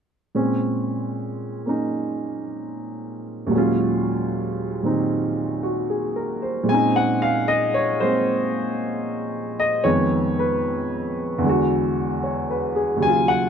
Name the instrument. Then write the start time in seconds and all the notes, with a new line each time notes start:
grand piano
0.35 A#2 G#3 C4 C#4
1.66 A#3 C#4 D#4
3.47 D#2 A#2
3.51 F#3 G#3
3.55 C#4 F4
4.83 A#2 D#3 C4 D#4
5.63 F#4
5.90 G#4
6.16 A#4
6.42 C5
6.63 A#2 G#3
6.69 C4 C#4 G#5
6.74 D#4
6.96 F#5
7.22 F5
7.48 D#5
7.74 C#5
8.00 G#3 A#3 C4 C5
9.60 D#5
9.84 F2 D#3 G#3 B3 C#5
10.39 B4
11.38 E2 D3
11.46 G#3 F#4
12.23 C#5
12.51 B4
12.76 G#4
12.97 D#2 C#3
13.03 F#3 G#5
13.08 F4
13.28 F#5